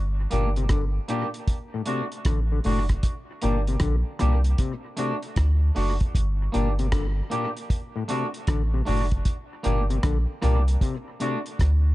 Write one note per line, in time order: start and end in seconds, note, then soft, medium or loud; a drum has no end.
0.00 0.27 G1 loud
0.31 0.99 G1 medium
0.31 0.46 A#2 medium
0.31 0.48 A#3 medium
0.31 0.48 D4 medium
0.31 0.49 G4 medium
0.31 closed hi-hat medium
0.56 0.64 C3 medium
0.56 closed hi-hat soft
0.69 0.84 D3 medium
0.69 kick loud
0.69 cross-stick loud
0.69 closed hi-hat medium
1.08 1.23 A#2 medium
1.08 1.26 A#3 medium
1.08 1.26 D4 medium
1.08 1.27 G4 medium
1.08 closed hi-hat medium
1.34 closed hi-hat medium
1.48 kick loud
1.48 closed hi-hat medium
1.74 1.81 A2 medium
1.86 2.02 C3 medium
1.86 2.03 A3 medium
1.86 2.04 D4 medium
1.86 2.04 F#4 loud
1.86 closed hi-hat medium
2.12 closed hi-hat soft
2.25 2.60 A1 medium
2.25 2.40 D3 medium
2.25 kick loud
2.25 cross-stick loud
2.25 closed hi-hat medium
2.52 2.59 D3 medium
2.64 2.99 F#1 medium
2.64 2.79 A2 medium
2.64 2.82 A3 medium
2.64 2.82 D4 medium
2.64 2.82 F#4 medium
2.64 open hi-hat medium
2.89 kick medium
2.89 cross-stick medium
2.89 closed hi-hat medium
3.03 kick loud
3.03 closed hi-hat loud
3.42 3.77 G1 medium
3.42 3.57 A#2 medium
3.42 3.59 A#3 medium
3.42 3.60 D4 medium
3.42 3.60 G4 medium
3.42 closed hi-hat medium
3.67 3.76 C3 medium
3.67 closed hi-hat soft
3.80 4.03 A#1 loud
3.80 3.96 D3 medium
3.80 kick loud
3.80 cross-stick loud
3.80 closed hi-hat medium
4.19 4.55 C2 loud
4.19 4.34 A#2 medium
4.19 4.37 A#3 medium
4.19 4.37 D4 medium
4.19 4.38 G4 medium
4.19 cross-stick medium
4.19 closed hi-hat medium
4.44 closed hi-hat medium
4.58 4.73 C3 medium
4.58 kick loud
4.58 closed hi-hat medium
4.97 5.12 C3 medium
4.97 5.14 A3 medium
4.97 5.15 D4 medium
4.97 5.15 F#4 medium
4.97 closed hi-hat medium
5.23 closed hi-hat soft
5.36 5.71 D2 loud
5.36 kick loud
5.36 cross-stick loud
5.36 closed hi-hat medium
5.75 5.98 F#1 medium
5.75 5.92 A3 medium
5.75 5.93 D4 medium
5.75 5.93 F#4 medium
5.75 open hi-hat medium
6.00 kick loud
6.00 closed hi-hat medium
6.15 6.49 G1 loud
6.15 kick loud
6.15 closed hi-hat loud
6.52 7.22 G1 medium
6.52 6.68 A#2 medium
6.52 6.70 A#3 medium
6.52 6.70 D4 medium
6.52 6.71 G4 medium
6.52 closed hi-hat medium
6.79 6.87 C3 medium
6.79 closed hi-hat soft
6.92 7.07 D3 medium
6.92 kick loud
6.92 cross-stick loud
6.92 closed hi-hat medium
7.30 7.46 A#2 medium
7.30 7.48 A#3 medium
7.30 7.48 D4 medium
7.30 7.49 G4 medium
7.30 closed hi-hat medium
7.57 closed hi-hat medium
7.70 kick loud
7.70 closed hi-hat medium
7.96 8.03 A2 medium
8.08 8.24 C3 medium
8.08 8.26 A3 medium
8.08 8.26 D4 medium
8.08 8.27 F#4 loud
8.08 closed hi-hat medium
8.34 closed hi-hat soft
8.47 8.82 A1 medium
8.47 8.63 D3 medium
8.47 kick loud
8.47 cross-stick loud
8.47 closed hi-hat medium
8.74 8.81 C3 medium
8.85 9.21 F#1 medium
8.85 9.02 A2 medium
8.85 9.03 A3 medium
8.85 9.04 D4 medium
8.85 9.04 F#4 medium
8.85 open hi-hat medium
9.12 kick medium
9.12 closed hi-hat medium
9.25 kick loud
9.25 closed hi-hat loud
9.63 9.99 G1 medium
9.63 9.79 A#2 medium
9.63 9.81 A#3 medium
9.63 9.81 D4 medium
9.63 9.82 G4 medium
9.63 closed hi-hat medium
9.90 9.98 C3 medium
9.90 closed hi-hat soft
10.03 10.26 A#1 loud
10.03 10.18 D3 medium
10.03 kick loud
10.03 cross-stick loud
10.03 closed hi-hat medium
10.42 10.77 C2 loud
10.42 10.57 A#2 medium
10.42 10.59 A#3 medium
10.42 10.60 D4 medium
10.42 10.60 G4 medium
10.42 cross-stick medium
10.42 closed hi-hat medium
10.68 closed hi-hat medium
10.81 10.96 C3 medium
10.81 kick loud
10.81 closed hi-hat medium
11.20 11.35 C3 medium
11.20 11.37 A3 medium
11.20 11.38 D4 medium
11.20 11.38 F#4 loud
11.20 closed hi-hat medium
11.46 closed hi-hat soft
11.59 11.93 D2 medium
11.59 kick loud
11.59 cross-stick loud
11.59 closed hi-hat medium